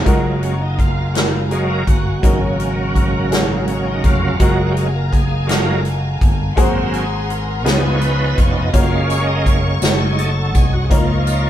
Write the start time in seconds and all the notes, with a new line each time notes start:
0.05 F#1 F#3 G#3 A#3 F4 F#4 A#4 F5 G#5 A#5, kick, closed hi-hat
0.43 C#4, closed hi-hat
0.62 D#4
0.79 F4, kick, closed hi-hat
1.14 G#3 F4 F#4 A#4, snare, closed hi-hat
1.51 F#3 G#3 A#3 G#4, closed hi-hat
1.69 A#4
1.87 G1 F#4, kick, closed hi-hat
2.21 G#1 G#2 C#3 F#3 G#3 A#3 C#4 D#4 F#4 A#4 C#5 A#5, kick, closed hi-hat
2.60 closed hi-hat
2.95 kick, closed hi-hat
3.30 G#3 C#4 F#4 G#4, snare, closed hi-hat
3.68 C#4, closed hi-hat
3.87 D#4
4.04 F1 F4, kick, closed hi-hat
4.39 F#1 F#3 G#3 A#3 F4 F#4 A#4 F5 G#5, kick, closed hi-hat
4.71 G4
4.77 G#4, closed hi-hat
4.95 A#4
5.12 G#4, kick, closed hi-hat
5.47 F#3 G#3 A#3 F4 F#4 A4 A#4, snare, closed hi-hat
5.57 A#4
5.85 closed hi-hat
6.21 G1, kick, closed hi-hat
6.56 G#1 G#2 F#3 A#3 C4 F#4 G#4 C5 F#5 A#5 C6, kick, closed hi-hat
6.94 G#4, closed hi-hat
7.30 A#4, closed hi-hat
7.65 C#2 C#3 F3 B3 D#4 F4 G#4 B4 F5 B5 C#6, snare, closed hi-hat
7.73 C#5
7.95 C#5
8.01 B4, closed hi-hat
8.38 F1 C#5, kick, closed hi-hat
8.50 D5
8.56 D#5
8.73 F#1 G#3 A#3 C#4 F4 F#4 C#5 F5 A#5 C#6, kick, closed hi-hat
9.10 C#5, closed hi-hat, tambourine
9.27 D#5
9.46 C#5, kick, closed hi-hat, tambourine
9.80 F#1 A3 D#4 F#4 G#4 C5 D#5 F#5, snare, closed hi-hat, tambourine
9.90 C#5
10.18 A4, closed hi-hat
10.55 C2 G#4, kick, closed hi-hat, tambourine
10.73 F#4
10.84 G#4
10.90 C#2 C#3 F3 A#3 D#4 F4 C#5 F5 A#5 C#6, kick, closed hi-hat
11.27 closed hi-hat, tambourine